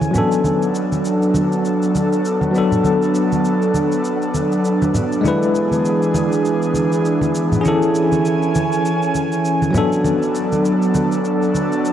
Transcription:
0.00 0.11 E3 medium
0.00 0.11 C#4 medium
0.00 0.13 C#4 medium
0.00 0.12 E4 medium
0.00 0.10 G#4 medium
0.00 0.13 A4 medium
0.00 0.13 G#5 medium
0.00 high conga medium
0.00 shaker soft
0.12 2.50 F#3 medium
0.12 5.21 F#3 medium
0.12 2.51 B3 medium
0.12 7.61 B3 medium
0.12 7.61 D4 medium
0.12 5.21 A4 medium
0.12 low conga medium
0.12 shaker medium
0.16 2.52 D4 medium
0.16 2.54 A4 medium
0.32 shaker soft
0.44 high conga medium
0.44 shaker soft
0.62 shaker soft
0.75 shaker medium
0.92 high conga medium
0.92 shaker soft
1.05 shaker soft
1.23 shaker soft
1.34 high conga medium
1.34 shaker medium
1.52 shaker soft
1.65 shaker soft
1.83 shaker soft
1.95 high conga medium
1.95 shaker medium
2.13 shaker soft
2.25 shaker soft
2.41 high conga medium
2.41 shaker soft
2.51 5.20 F#3 medium
2.51 5.21 B3 medium
2.51 shaker medium
2.56 5.22 D4 medium
2.56 5.23 A4 medium
2.72 low conga medium
2.72 shaker soft
2.84 high conga medium
2.84 shaker soft
3.02 shaker soft
3.15 shaker medium
3.32 high conga medium
3.32 shaker soft
3.45 shaker soft
3.62 shaker soft
3.74 high conga medium
3.74 shaker medium
3.92 shaker soft
4.05 shaker soft
4.22 shaker soft
4.34 high conga medium
4.34 shaker medium
4.52 shaker soft
4.65 shaker soft
4.82 high conga medium
4.82 shaker soft
4.95 low conga medium
4.95 shaker medium
5.12 shaker soft
5.21 9.71 E3 medium
5.21 7.60 G#3 medium
5.21 7.61 D4 medium
5.21 7.63 G#4 medium
5.21 high conga medium
5.25 7.62 E4 medium
5.25 7.63 B4 medium
5.25 shaker soft
5.43 shaker soft
5.55 shaker medium
5.71 high conga medium
5.71 shaker soft
5.85 shaker soft
6.03 shaker soft
6.14 high conga medium
6.14 shaker medium
6.33 shaker soft
6.46 shaker soft
6.63 shaker soft
6.74 high conga medium
6.74 shaker medium
6.93 shaker soft
7.05 shaker soft
7.21 high conga medium
7.21 shaker soft
7.35 shaker medium
7.52 low conga medium
7.52 shaker soft
7.61 9.71 C#4 medium
7.61 9.73 C#4 medium
7.61 9.70 G#4 medium
7.61 9.73 G#5 medium
7.65 9.72 E4 medium
7.65 9.73 A4 medium
7.65 high conga medium
7.65 shaker soft
7.82 shaker soft
7.95 shaker medium
8.12 high conga medium
8.12 shaker soft
8.25 shaker soft
8.42 shaker soft
8.55 high conga medium
8.55 shaker medium
8.72 shaker soft
8.85 shaker soft
9.02 shaker soft
9.15 high conga soft
9.15 shaker medium
9.32 shaker soft
9.45 shaker soft
9.62 high conga medium
9.62 shaker soft
9.71 11.93 F#3 medium
9.71 11.93 B3 medium
9.71 low conga medium
9.75 11.93 B3 medium
9.75 11.93 D4 medium
9.75 11.93 A4 medium
9.75 shaker medium
9.92 shaker soft
10.04 high conga medium
10.04 shaker soft
10.22 shaker soft
10.35 shaker medium
10.52 high conga soft
10.52 shaker soft
10.65 shaker soft
10.82 shaker soft
10.95 high conga medium
10.95 shaker medium
11.12 shaker soft
11.25 shaker soft
11.42 shaker soft
11.54 high conga medium
11.54 shaker medium
11.72 shaker soft
11.85 shaker soft

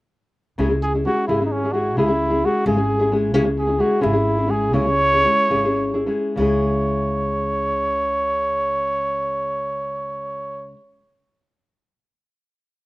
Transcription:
0.58 1.04 C#2 medium
0.58 0.70 C#3 medium
0.58 0.71 G#3 medium
0.58 0.70 C#4 medium
0.58 0.69 E4 medium
0.58 0.68 G#4 medium
0.70 0.94 C#4 soft
0.70 0.94 E4 soft
0.70 0.93 G#4 soft
0.83 0.93 G#4 medium
0.94 1.05 C#4 soft
0.94 1.06 E4 soft
0.94 1.05 G#4 soft
1.05 1.28 G#3 soft
1.05 1.27 C#4 medium
1.05 1.28 E4 soft
1.05 1.27 F#4 medium
1.05 1.29 G#4 medium
1.27 1.98 G#1 medium
1.27 1.40 C#3 medium
1.27 1.40 G#3 medium
1.27 1.40 C#4 soft
1.27 1.44 E4 medium
1.27 1.41 E4 medium
1.27 1.39 G#4 medium
1.40 1.64 C#4 soft
1.40 1.64 E4 soft
1.40 1.63 G#4 soft
1.46 1.53 D#4 soft
1.52 1.74 C#4 medium
1.64 1.73 C#4 soft
1.64 1.73 E4 soft
1.64 1.73 G#4 soft
1.72 1.96 G#3 soft
1.72 1.96 C#4 soft
1.72 1.96 E4 medium
1.72 1.96 F#4 medium
1.72 1.97 G#4 soft
1.97 2.42 C#2 medium
1.97 2.09 C#3 medium
1.97 2.09 G#3 medium
1.97 2.08 C#4 medium
1.97 2.08 E4 medium
1.97 2.47 E4 medium
1.97 2.07 G#4 medium
2.08 2.31 C#4 soft
2.08 2.30 E4 soft
2.08 2.29 G#4 soft
2.30 2.43 C#4 soft
2.30 2.43 E4 soft
2.30 2.42 G#4 soft
2.44 2.66 G#3 soft
2.44 2.65 C#4 soft
2.44 2.65 E4 soft
2.44 2.66 F#4 medium
2.44 2.66 G#4 soft
2.66 3.35 G#1 medium
2.66 2.77 C#3 medium
2.66 2.78 G#3 medium
2.66 2.77 C#4 medium
2.66 2.76 E4 medium
2.66 2.75 G#4 medium
2.66 3.14 G#4 medium
2.77 2.99 C#4 soft
2.77 2.99 E4 soft
2.77 2.98 G#4 soft
2.99 3.11 C#4 soft
2.99 3.11 E4 soft
2.99 3.11 G#4 soft
3.12 3.33 G#3 medium
3.12 3.33 C#4 soft
3.12 3.33 E4 soft
3.12 3.33 G#4 soft
3.34 3.79 C#2 medium
3.34 3.45 C#3 medium
3.34 3.46 G#3 medium
3.34 3.45 C#4 medium
3.34 3.45 E4 medium
3.34 3.44 G#4 medium
3.45 3.68 C#4 soft
3.45 3.67 E4 soft
3.45 3.66 G#4 soft
3.59 3.82 G#4 medium
3.67 3.79 C#4 soft
3.67 3.79 E4 soft
3.67 3.79 G#4 soft
3.79 4.01 G#3 soft
3.79 4.00 C#4 soft
3.79 4.01 E4 soft
3.79 4.04 F#4 medium
3.79 4.01 G#4 soft
4.01 4.73 G#1 medium
4.01 4.13 C#3 medium
4.01 4.14 G#3 medium
4.01 4.14 C#4 medium
4.01 4.13 E4 medium
4.01 4.52 E4 medium
4.01 4.12 G#4 medium
4.13 4.38 C#4 soft
4.13 4.37 E4 soft
4.13 4.37 G#4 medium
4.38 4.47 C#4 soft
4.38 4.47 E4 soft
4.38 4.48 G#4 soft
4.47 4.72 G#3 soft
4.47 4.72 C#4 soft
4.47 4.73 E4 soft
4.47 4.73 G#4 soft
4.47 4.74 G#4 medium
4.73 5.24 C#2 medium
4.73 4.86 C#3 medium
4.73 4.86 G#3 medium
4.73 4.86 C#4 medium
4.73 4.86 E4 medium
4.73 4.85 G#4 medium
4.73 6.05 C#5 medium
4.86 5.13 C#4 soft
4.86 5.12 E4 soft
4.86 5.12 G#4 soft
5.13 5.24 C#4 soft
5.13 5.24 E4 soft
5.13 5.25 G#4 soft
5.24 5.49 G#3 soft
5.24 5.49 C#4 soft
5.24 5.50 E4 medium
5.24 5.49 G#4 soft
5.50 6.07 G#1 medium
5.50 5.64 C#3 medium
5.50 5.65 G#3 medium
5.50 5.65 C#4 medium
5.50 5.65 E4 medium
5.50 5.64 G#4 medium
5.65 5.94 C#4 soft
5.65 5.94 E4 soft
5.65 5.93 G#4 soft
5.94 6.05 C#4 soft
5.94 6.06 E4 soft
5.94 6.07 G#4 soft
6.06 6.37 G#3 medium
6.06 6.36 C#4 soft
6.06 6.37 E4 soft
6.06 6.37 G#4 soft
6.36 10.71 C#2 medium
6.36 10.74 C#3 medium
6.36 10.76 G#3 medium
6.36 10.77 C#4 medium
6.36 10.72 C#5 medium
6.40 10.78 E4 medium
6.40 10.80 G#4 medium

